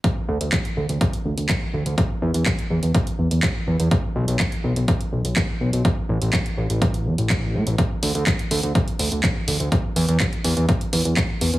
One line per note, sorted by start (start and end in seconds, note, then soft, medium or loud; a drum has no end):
0.04 kick loud
0.04 closed hi-hat medium
0.28 0.38 D2 medium
0.41 0.50 D2 medium
0.41 closed hi-hat medium
0.52 kick loud
0.52 clap loud
0.52 closed hi-hat medium
0.65 closed hi-hat soft
0.77 0.87 D2 medium
0.89 0.98 D2 medium
0.89 closed hi-hat medium
1.01 kick loud
1.01 closed hi-hat medium
1.13 closed hi-hat soft
1.25 1.35 D2 medium
1.38 1.47 D2 medium
1.38 closed hi-hat medium
1.49 kick loud
1.49 clap loud
1.49 closed hi-hat medium
1.74 1.83 D2 medium
1.86 1.95 D2 medium
1.86 closed hi-hat medium
1.98 kick loud
1.98 closed hi-hat medium
2.22 2.32 E2 medium
2.34 2.44 E2 medium
2.34 closed hi-hat medium
2.46 kick loud
2.46 clap loud
2.46 closed hi-hat medium
2.59 closed hi-hat soft
2.70 2.80 E2 medium
2.83 2.92 E2 medium
2.83 closed hi-hat medium
2.94 kick loud
2.94 closed hi-hat medium
3.07 closed hi-hat soft
3.19 3.29 E2 medium
3.31 3.40 E2 medium
3.31 closed hi-hat medium
3.43 kick loud
3.43 clap loud
3.43 closed hi-hat medium
3.67 3.77 E2 medium
3.80 3.89 E2 medium
3.80 closed hi-hat medium
3.91 kick loud
3.91 closed hi-hat medium
4.16 4.25 B1 medium
4.28 4.37 B1 medium
4.28 closed hi-hat soft
4.39 kick loud
4.39 clap loud
4.39 closed hi-hat medium
4.52 closed hi-hat soft
4.64 4.74 B1 medium
4.76 4.86 B1 medium
4.76 closed hi-hat soft
4.88 kick loud
4.88 closed hi-hat medium
5.01 closed hi-hat soft
5.12 5.22 B1 medium
5.25 5.34 B1 medium
5.25 closed hi-hat soft
5.36 kick loud
5.36 clap loud
5.36 closed hi-hat medium
5.61 5.70 B1 medium
5.73 5.82 B1 medium
5.73 closed hi-hat soft
5.85 kick loud
5.85 closed hi-hat medium
6.09 6.19 A1 loud
6.22 6.31 A1 medium
6.22 closed hi-hat soft
6.33 kick loud
6.33 clap loud
6.33 closed hi-hat medium
6.46 closed hi-hat soft
6.58 6.67 A1 medium
6.70 7.07 A1 medium
6.70 closed hi-hat soft
6.82 kick loud
6.82 closed hi-hat medium
6.94 closed hi-hat soft
7.06 7.16 E2 medium
7.18 7.56 A1 medium
7.18 closed hi-hat soft
7.30 kick loud
7.30 clap loud
7.30 closed hi-hat medium
7.54 7.64 A2 medium
7.67 7.76 A1 medium
7.67 closed hi-hat soft
7.78 kick loud
7.78 closed hi-hat medium
8.03 8.12 D2 medium
8.03 open hi-hat loud
8.15 8.24 D2 medium
8.15 closed hi-hat soft
8.27 kick loud
8.27 clap loud
8.27 closed hi-hat medium
8.39 closed hi-hat soft
8.51 8.61 D2 medium
8.51 open hi-hat loud
8.63 8.73 D2 medium
8.63 closed hi-hat soft
8.75 kick loud
8.75 closed hi-hat medium
8.88 closed hi-hat soft
8.99 9.09 D2 medium
8.99 open hi-hat loud
9.12 9.21 D2 medium
9.12 closed hi-hat soft
9.23 kick loud
9.23 clap loud
9.23 closed hi-hat medium
9.48 9.57 D2 medium
9.48 open hi-hat loud
9.60 9.69 D2 medium
9.60 closed hi-hat soft
9.72 kick loud
9.72 closed hi-hat medium
9.96 10.06 E2 medium
9.96 open hi-hat medium
10.08 10.18 E2 medium
10.08 closed hi-hat medium
10.20 kick loud
10.20 clap loud
10.20 closed hi-hat medium
10.33 closed hi-hat soft
10.44 10.54 E2 medium
10.44 open hi-hat loud
10.57 10.66 E2 medium
10.57 closed hi-hat medium
10.69 kick loud
10.69 closed hi-hat medium
10.81 closed hi-hat soft
10.93 11.03 E2 medium
10.93 open hi-hat loud
11.05 11.15 E2 medium
11.05 closed hi-hat medium
11.17 kick loud
11.17 clap loud
11.17 closed hi-hat medium
11.41 11.51 E2 medium
11.41 open hi-hat loud
11.54 11.59 E2 medium
11.54 closed hi-hat soft